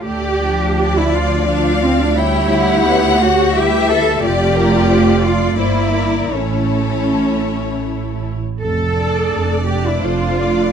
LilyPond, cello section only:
\new Staff \with { instrumentName = "Cello section" } { \time 3/4 \key d \minor \tempo 4 = 84 g'4~ g'16 e'16 f'8 d'8 c'16 d'16 | e'4. fis'8 g'8 a'8 | g'4. f'8 e'4 | cis'2~ cis'8 r8 |
a'4. g'16 e'16 f'4 | }